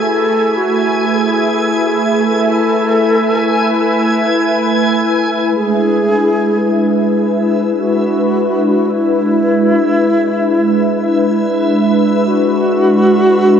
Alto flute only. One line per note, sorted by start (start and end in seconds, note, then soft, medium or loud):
0.02 0.59 A4 loud
0.57 1.07 F#4 medium
1.06 1.16 A4 medium
1.15 2.24 G#4 medium
2.26 4.43 A4 loud
5.55 7.18 G#4 loud
7.79 8.92 F#4 medium
8.91 11.12 E4 loud
11.14 11.93 E4 medium
12.26 13.60 F#4 loud